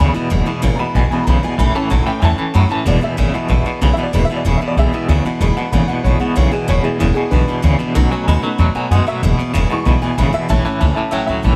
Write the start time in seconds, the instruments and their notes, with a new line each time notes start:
Already playing: honky-tonk piano G#3 B3 E4
0.00 upright bass D2, clean electric guitar E2 C#3, steel-string acoustic guitar E2 B2 E3 G#3 B3 E4, honky-tonk piano B5
0.14 clean electric guitar E2 B2, steel-string acoustic guitar E3 G#3 B3 E4, muted upright bass stroke
0.30 upright bass E1, steel-string acoustic guitar E2 B2 E3 G#3 B3 E4, clean electric guitar E2 B2
0.46 clean electric guitar E2 B2, steel-string acoustic guitar E3 G#3 B3 E4, honky-tonk piano G#3 B3 E4, muted upright bass stroke
0.62 upright bass G#1, steel-string acoustic guitar E2 B2 E3 G#3 B3 E4, clean electric guitar E2 C#3
0.75 steel-string acoustic guitar E4, honky-tonk piano A#5
0.79 clean electric guitar E2 B2, steel-string acoustic guitar E3 G#3 B3, honky-tonk piano B5, muted upright bass stroke
0.95 upright bass A1, clean electric guitar E2 B2, steel-string acoustic guitar E3 G#3 B3 E4, honky-tonk piano G#5
1.11 clean electric guitar E2 B2, steel-string acoustic guitar E3 G#3 B3 E4, honky-tonk piano G#3 B3 E4 B5, muted upright bass stroke
1.24 upright bass B1, steel-string acoustic guitar E2 B2 E3 G#3 B3, clean electric guitar E2 C#3, honky-tonk piano A#5
1.28 steel-string acoustic guitar E4, honky-tonk piano B5
1.42 clean electric guitar E2 B2, steel-string acoustic guitar E3 G#3 B3 E4, honky-tonk piano G#5, muted upright bass stroke
1.58 upright bass A1, clean electric guitar A2 E3, steel-string acoustic guitar A2 E3 A3 C#4 E4, honky-tonk piano B5
1.74 clean electric guitar A2 E3, honky-tonk piano A3 C#4 E4 C#5 A5, steel-string acoustic guitar A3 C#4 E4, muted upright bass stroke
1.90 upright bass A1, steel-string acoustic guitar A2 E3 A3 C#4 E4, clean electric guitar A2 F#3
2.06 clean electric guitar A2 E3, steel-string acoustic guitar A3 C#4 E4, honky-tonk piano G5, muted upright bass stroke
2.20 upright bass E2, clean electric guitar A2 E3, steel-string acoustic guitar E3 A3 C#4 E4, honky-tonk piano G#5
2.25 honky-tonk piano A5
2.38 clean electric guitar A2 E3, steel-string acoustic guitar A3 C#4 E4, muted upright bass stroke
2.54 upright bass F#2, steel-string acoustic guitar A2 E3 A3 C#4 E4, clean electric guitar A2 F#3, honky-tonk piano B5
2.69 clean electric guitar A2 E3, steel-string acoustic guitar A3 C#4 E4, honky-tonk piano A5, muted upright bass stroke
2.85 upright bass E1, clean electric guitar E2 B2, steel-string acoustic guitar E2 B2 E3 G#3 B3 E4, honky-tonk piano G#3 B3 E4 D5
3.01 clean electric guitar E2 B2, steel-string acoustic guitar E3 G#3 B3 E4, honky-tonk piano E5, muted upright bass stroke
3.17 upright bass G#1, steel-string acoustic guitar E2 B2 E3 G#3 B3 E4, clean electric guitar E2 C#3
3.34 clean electric guitar E2 B2, steel-string acoustic guitar E3 G#3 B3 E4, muted upright bass stroke
3.48 upright bass A1, clean electric guitar E2 B2, steel-string acoustic guitar E3 G#3 B3 E4
3.65 clean electric guitar E2 B2, steel-string acoustic guitar E3 G#3 B3 E4, muted upright bass stroke
3.81 upright bass B1, clean electric guitar E2 C#3, steel-string acoustic guitar E2 B2 E3 G#3 B3 E4, honky-tonk piano B5
3.93 steel-string acoustic guitar E4, honky-tonk piano E5
3.98 clean electric guitar E2 B2, steel-string acoustic guitar E3 G#3 B3, muted upright bass stroke
4.03 honky-tonk piano D5
4.13 upright bass E1, clean electric guitar E2 B2, steel-string acoustic guitar E2 B2 E3 G#3 B3 E4, honky-tonk piano G#3 B3 E4 B5
4.25 honky-tonk piano E5
4.29 clean electric guitar E2 B2, steel-string acoustic guitar E3 G#3 B3 E4, muted upright bass stroke
4.36 honky-tonk piano D5
4.45 upright bass E1, steel-string acoustic guitar E2 B2 E3 G#3 B3 E4, clean electric guitar E2 C#3, honky-tonk piano B5
4.57 steel-string acoustic guitar E4, honky-tonk piano E5, muted upright bass stroke
4.61 clean electric guitar E2 B2, steel-string acoustic guitar E3 G#3 B3
4.68 honky-tonk piano D5
4.77 upright bass B1, clean electric guitar E2 B2, steel-string acoustic guitar E3 G#3 B3 E4, honky-tonk piano G#4 E5
4.92 clean electric guitar B2, steel-string acoustic guitar E3 G#3 B3 E4, honky-tonk piano G#3 B3 E4, muted upright bass stroke
5.08 upright bass D2, clean electric guitar E2 C#3, steel-string acoustic guitar E2 B2 E3 G#3 B3 E4
5.25 clean electric guitar E2 B2, steel-string acoustic guitar E3 G#3 B3 E4, muted upright bass stroke
5.40 upright bass E1, steel-string acoustic guitar E2 B2 E3 G#3 B3 E4, clean electric guitar E2 B2, honky-tonk piano G#3 B3 E4 B5
5.56 clean electric guitar E2 B2, steel-string acoustic guitar E3 G#3 B3 E4, honky-tonk piano F#5, muted upright bass stroke
5.72 upright bass G#1, steel-string acoustic guitar E2 B2 E3 G#3 B3 E4, clean electric guitar E2 C#3, honky-tonk piano B5
5.88 clean electric guitar E2 B2, steel-string acoustic guitar E3 G#3 B3 E4, honky-tonk piano F#5, muted upright bass stroke
6.04 upright bass A1, clean electric guitar E2 B2, steel-string acoustic guitar E3 G#3 B3 E4, honky-tonk piano C#5
6.19 clean electric guitar E2 B2, steel-string acoustic guitar E3 G#3 B3 E4, honky-tonk piano G#3 B3 E4 F#5, muted upright bass stroke
6.35 upright bass B1, steel-string acoustic guitar E2 B2 E3 G#3 B3 E4, clean electric guitar E2 C#3, honky-tonk piano C#5
6.51 clean electric guitar E2 B2, steel-string acoustic guitar E3 G#3 B3 E4, honky-tonk piano G#4, muted upright bass stroke
6.68 upright bass E1, steel-string acoustic guitar E2 B2 E3 G#3 B3 E4, clean electric guitar E2 B2, honky-tonk piano C#5
6.82 clean electric guitar E2 B2, steel-string acoustic guitar E3 G#3 B3 E4, honky-tonk piano G#3 B3 E4 G#4, muted upright bass stroke
6.99 upright bass E1, clean electric guitar E2 C#3, steel-string acoustic guitar E2 B2 E3 G#3 B3 E4, honky-tonk piano E4
7.14 clean electric guitar E2 B2, steel-string acoustic guitar E3 G#3 B3 E4, honky-tonk piano G#4, muted upright bass stroke
7.31 upright bass B1, clean electric guitar E2 B2, steel-string acoustic guitar E3 G#3 B3 E4, honky-tonk piano D4 B4
7.47 clean electric guitar E2 B2, steel-string acoustic guitar E3 G#3 B3 E4, muted upright bass stroke
7.62 upright bass D2, steel-string acoustic guitar E2 B2 E3 G#3 B3 E4, clean electric guitar E2 C#3
7.78 clean electric guitar E2 B2, steel-string acoustic guitar E3 G#3 B3 E4, muted upright bass stroke
7.94 upright bass B1, clean electric guitar B2 F#3, steel-string acoustic guitar B2 D#3 A3 B3 F#4, honky-tonk piano A3 C#4 D#4
8.11 clean electric guitar B2 F#3, steel-string acoustic guitar A3 B3 F#4, honky-tonk piano G#5, muted upright bass stroke
8.24 upright bass D#2, clean electric guitar B2 G#3, steel-string acoustic guitar B2, honky-tonk piano A#5
8.28 steel-string acoustic guitar D#3 A3 B3 F#4, honky-tonk piano B5
8.42 clean electric guitar B2 F#3, honky-tonk piano A3 C#4 D#4, steel-string acoustic guitar A3 B3 F#4, muted upright bass stroke
8.58 upright bass E2, clean electric guitar B2 F#3, steel-string acoustic guitar D#3 A3 B3 F#4
8.75 clean electric guitar B2 F#3, steel-string acoustic guitar A3 B3 F#4, honky-tonk piano G#5, muted upright bass stroke
8.91 upright bass F#2, clean electric guitar B2 G#3, steel-string acoustic guitar B2 D#3 A3 B3 F#4, honky-tonk piano F#5
9.07 clean electric guitar B2 F#3, steel-string acoustic guitar A3 B3 F#4, honky-tonk piano E5, muted upright bass stroke
9.22 upright bass E1, clean electric guitar E2 B2, steel-string acoustic guitar E2 B2 E3 G#3 B3 E4
9.38 clean electric guitar E2 B2, steel-string acoustic guitar E3 G#3 B3 E4, muted upright bass stroke
9.54 upright bass E1, clean electric guitar E2 C#3, steel-string acoustic guitar E2 B2 E3 G#3 B3 E4
9.69 clean electric guitar E2 B2, honky-tonk piano G#3 B3 E4 C#6, steel-string acoustic guitar G#3 B3 E4, muted upright bass stroke
9.85 upright bass B1, clean electric guitar E2 B2, steel-string acoustic guitar E3 G#3 B3 E4, honky-tonk piano B5
10.02 clean electric guitar E2 B2, steel-string acoustic guitar E3 G#3 B3 E4, honky-tonk piano G#5, muted upright bass stroke
10.18 upright bass G#1, clean electric guitar E2 C#3, steel-string acoustic guitar E2 B2 E3 G#3 B3 E4, honky-tonk piano B5
10.33 clean electric guitar E2 B2, steel-string acoustic guitar E3 G#3 B3 E4, honky-tonk piano E5, muted upright bass stroke
10.49 upright bass A1, steel-string acoustic guitar A2 E3 A3 C#4 E4, clean electric guitar A2 E3, honky-tonk piano C#5 E5 A5
10.65 clean electric guitar A2 E3, steel-string acoustic guitar A3 C#4 E4, honky-tonk piano C#5 E5 A5, muted upright bass stroke
10.80 upright bass C#2, clean electric guitar A2 E3, steel-string acoustic guitar E3 A3 C#4 E4, honky-tonk piano C#5 E5 A5
10.91 upright piano G#5
10.95 clean electric guitar A2 E3, steel-string acoustic guitar A3 C#4 E4, honky-tonk piano C#5 E5 B5, upright piano E5 A5, muted upright bass stroke
11.11 upright bass A1, steel-string acoustic guitar A2 E3 A3 C#4 E4, clean electric guitar A2 F#3, honky-tonk piano C#5 E5 G#5, upright piano E5 G5
11.26 upright bass C#2, clean electric guitar A2, steel-string acoustic guitar A3 C#4 E4, honky-tonk piano C#5 E5 B5, upright piano E5
11.30 clean electric guitar F#3
11.43 upright bass A1, clean electric guitar A2 E3, steel-string acoustic guitar E3 A3 C#4 E4, honky-tonk piano C#5 E5 A5